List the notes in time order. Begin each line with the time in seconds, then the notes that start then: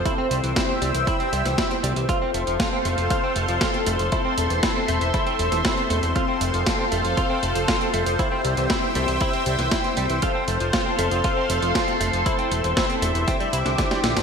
Already playing: C5
0.05 C4 E4 G4 C5 E5 G5 E6, kick, closed hi-hat
0.18 C4
0.31 C2 G3, closed hi-hat
0.44 C2 E3, closed hi-hat
0.56 E4, kick, snare, closed hi-hat
0.69 C4
0.82 C2 G3 C4 E4 G4 C5, closed hi-hat
0.95 C2 E3, closed hi-hat
1.07 E4, kick, closed hi-hat
1.20 C4, closed hi-hat
1.33 C2 G3, closed hi-hat
1.45 C2 E3, snare, closed hi-hat
1.58 E4, kick, snare, closed hi-hat
1.71 C4, closed hi-hat
1.83 C2 G3, closed hi-hat
1.96 C2 E3, closed hi-hat
2.09 C4 F4 A4 C5 F5 C6, kick, closed hi-hat
2.22 C4
2.34 F1 A3, closed hi-hat
2.47 F1 F3, closed hi-hat
2.60 F4, kick, snare, closed hi-hat
2.73 C4
2.85 F1 A3 C4 F4 A4 C5, closed hi-hat
2.98 F1 F3, closed hi-hat
3.10 F4, kick, closed hi-hat
3.23 C4
3.36 F1 A3, closed hi-hat
3.48 F1 F3, closed hi-hat
3.61 F4, kick, snare, closed hi-hat
3.74 C4, closed hi-hat
3.87 F1 A3, closed hi-hat
3.99 F1 F3, closed hi-hat
4.12 C4 E4 A4 C5 E5, kick, closed hi-hat
4.25 C4
4.38 E1 A3, closed hi-hat
4.50 E1 E3, closed hi-hat
4.63 E4, kick, snare, closed hi-hat
4.76 C4
4.88 E1 A3 C4 E4 A4 C5, closed hi-hat
5.01 E1 E3, closed hi-hat
5.14 E4, kick, closed hi-hat
5.27 C4, closed hi-hat
5.39 E1 A3, closed hi-hat
5.52 E1 E3, snare, closed hi-hat
5.65 E4, kick, snare, closed hi-hat
5.77 C4, closed hi-hat
5.90 E1 A3, closed hi-hat
6.03 E1 E3, closed hi-hat
6.15 C4 F4 A4 C5 F5, kick, closed hi-hat
6.28 C4
6.41 F1 A3, closed hi-hat
6.54 F1 F3, closed hi-hat
6.66 F4, kick, snare, closed hi-hat
6.79 C4
6.92 F1 A3 C4 F4 A4 C5, closed hi-hat
7.04 F1 F3, closed hi-hat
7.17 F4, kick, closed hi-hat
7.30 C4
7.43 F1 A3, closed hi-hat
7.55 F1 F3, closed hi-hat
7.68 F4, kick, snare, closed hi-hat
7.81 C4, closed hi-hat
7.94 F1 A3, closed hi-hat
8.06 F1 F3, closed hi-hat
8.19 C4 E4 G4 C5 E5 G5 E6, kick, closed hi-hat
8.32 C4
8.44 C2 G3, closed hi-hat
8.57 C2 E3, closed hi-hat
8.70 E4, kick, snare, closed hi-hat
8.83 C4
8.95 C2 G3 C4 E4 G4 C5, closed hi-hat
9.08 C2 E3, closed hi-hat
9.21 E4, kick, closed hi-hat
9.33 C4, closed hi-hat
9.46 C2 G3, closed hi-hat
9.59 C2 E3, snare, closed hi-hat
9.72 E4, kick, snare, closed hi-hat
9.84 C4, closed hi-hat
9.97 C2 G3, closed hi-hat
10.10 C2 E3, closed hi-hat
10.22 C4 F4 A4 C5 F5 C6, kick, closed hi-hat
10.35 C4
10.48 F1 A3, closed hi-hat
10.60 F1 F3, closed hi-hat
10.73 F4, kick, snare, closed hi-hat
10.86 C4
10.99 F1 A3 C4 F4 A4 C5, closed hi-hat
11.11 F1 F3, closed hi-hat
11.24 F4, kick, closed hi-hat
11.37 C4
11.50 F1 A3, closed hi-hat
11.62 F1 F3, closed hi-hat
11.75 F4, kick, snare, closed hi-hat
11.88 C4, closed hi-hat
12.00 F1 A3, closed hi-hat
12.13 F1 F3, closed hi-hat
12.26 C4 E4 A4 C5 E5, kick, closed hi-hat
12.39 C4, closed hi-hat
12.51 E1 A3, closed hi-hat
12.64 E1 E3, closed hi-hat
12.77 E4, kick, snare, closed hi-hat
12.89 C4, closed hi-hat
13.02 E1 A3 D4 E4 G4 C5, closed hi-hat
13.15 E1 E3, closed hi-hat
13.27 C4 C5 G5 D6, kick, closed hi-hat
13.40 G3, closed hi-hat
13.53 C2 E4, closed hi-hat
13.66 C2 D3, snare, closed hi-hat
13.78 D3, kick, snare, closed hi-hat
13.91 G3, snare, closed hi-hat
14.04 A#1 D3, snare, closed hi-hat
14.16 G1 D4, snare, closed hi-hat